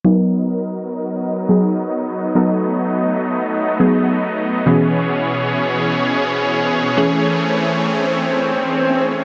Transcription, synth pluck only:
\new Staff \with { instrumentName = "Synth pluck" } { \time 4/4 \key b \major \tempo 4 = 104 <fis b dis' ais'>2~ <fis b dis' ais'>8 <fis b dis' gis'>4. | <fis b dis' a'>2~ <fis b dis' a'>8 <fis b dis' gis'>4. | <b, e b cis' gis'>1 | <e a cis' gis'>1 | }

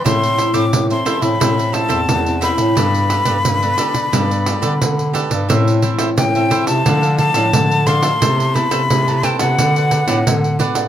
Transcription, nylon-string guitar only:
\new Staff \with { instrumentName = "Nylon-string guitar" } { \time 4/4 \key g \mixolydian \tempo 4 = 88 << { <e c' e'>8. <e c' e'>8 <e c' e'>8 <e c' e'>16 <e c' e'>8. <e c' e'>8 <e c' e'>8. | <b d' a'>8 r16 <b d' a'>8 <b d' a'>8. <b d' a'>8 r16 <b d' a'>8. <b d' a'>16 r16 | \key a \minor <e c' e'>8 <e c' e'>8. <e c' e'>8. <f a d'>8. <f a d'>8. <f a d'>16 r16 | <b e' a'>8 <b e' a'>8 r16 <b e' a'>8 <b fis' a'>4 <b fis' a'>8. <b fis' a'>16 r16 | } \\ { a,4 e4 a,4 e4 | g4 d4 g4 d4 | a,4 e4 d4 a,4 | c4 c4 d4 a,4 | } >> }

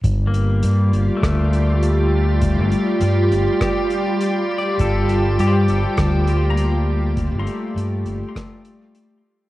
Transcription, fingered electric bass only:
\new Staff \with { instrumentName = "Fingered electric bass" } { \clef bass \time 4/4 \key g \minor \tempo 4 = 101 g,,4 g,8 g,,16 r16 d,2~ | d,16 g,,16 r8 g,8 g,,16 r2 r16 | g,,4 g,8 g,,16 r16 d,2~ | d,16 g,,16 r8 g,8 g,,16 r2 r16 | }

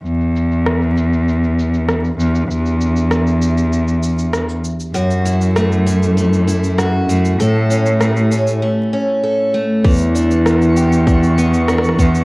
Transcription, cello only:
\new Staff \with { instrumentName = "Cello" } { \clef bass \time 4/4 \key e \dorian \tempo 4 = 98 e,2.~ e,8 e,8 | e,2.~ e,8 r8 | fis,2.~ fis,8 fis,8 | a,2 r2 |
e,2.~ e,8 e,8 | }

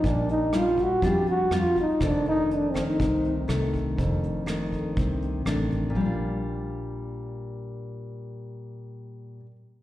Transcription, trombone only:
\new Staff \with { instrumentName = "Trombone" } { \time 4/4 \key bes \major \tempo 4 = 122 d'8 ees'8 f'8 ges'8 g'8 ges'8 f'8 ees'8 | d'8 ees'8 \tuplet 3/2 { d'8 c'8 ees'8~ } ees'8 r4. | r1 | r1 |
r1 | }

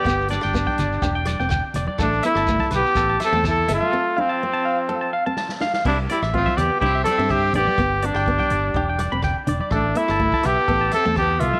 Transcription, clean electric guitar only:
\new Staff \with { instrumentName = "Clean electric guitar" } { \time 4/4 \key c \major \tempo 4 = 124 g'16 r16 d''16 g''16 r16 g''16 d''16 r16 g'16 g''16 d''16 g''16 g''16 r16 d''16 d''16 | a'16 r16 e''16 a''16 r16 a''16 b'16 r16 a'16 a''16 e''16 a''16 a''16 r16 e''16 e''16 | a'16 r16 f''16 a''16 r16 a''16 f''16 r16 a'16 a''16 f''16 a''16 a''16 r16 f''16 f''16 | e'16 r16 d''16 e''16 r16 e''16 d''16 r16 e'16 e''16 d''16 e''16 e''16 r16 d''16 d''16 |
g'16 r16 d''16 g''16 r16 g''16 d''16 r16 g'16 g''16 d''16 b''16 g''16 r16 d''16 d''16 | a'16 r16 e''16 a''16 r16 a''16 e''16 r16 a'16 a''16 e''16 a''16 a''16 r16 e''16 e''16 | }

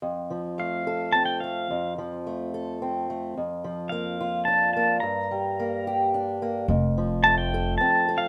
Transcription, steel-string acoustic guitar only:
\new Staff \with { instrumentName = "Steel-string acoustic guitar" } { \time 3/4 \key f \major \tempo 4 = 108 << { r4 a8 a'8 c'8 a8 | r4 a8 a'8 c'8 a8 | r4 bes8 f'8 d'8 bes8 | r4 bes8 g'8 d'8 bes8 |
r4 a8 a'8 c'8 a'8 | } \\ { f,8 f2~ f8 | f,8 f2~ f8 | f,8 f2~ f8 | g,8 g2~ g8 |
f,8 f2~ f8 | } >> }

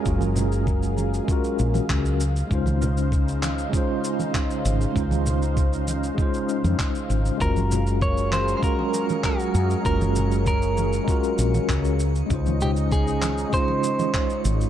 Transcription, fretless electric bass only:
\new Staff \with { instrumentName = "Fretless electric bass" } { \clef bass \time 4/4 \key ges \lydian \tempo 4 = 98 ges,,4.~ ges,,16 r8. bes,,16 r16 des,8. r16 | des,4.~ des,16 r4. r16 aes,,16 r16 | des,4.~ des,16 r4 f,16 r8 aes,,16 r16 | ges,,4.~ ges,,16 r4. r16 ges,16 r16 |
ges,,4.~ ges,,16 r8. bes,,16 r16 des,8. r16 | des,4.~ des,16 r4. r16 aes,,16 r16 | }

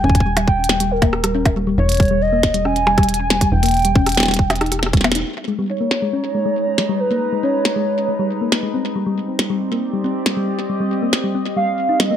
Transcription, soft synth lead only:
\new Staff \with { instrumentName = "Soft synth lead" } { \time 4/4 \key e \lydian \tempo 4 = 138 gis''4 g''4 ais'4. r8 | cis''4 dis''4 gis''2 | g''2. r4 | r4 cis''2. |
b'4 cis''2~ cis''8 r8 | r1 | r2 r8 eis''4 ees''8 | }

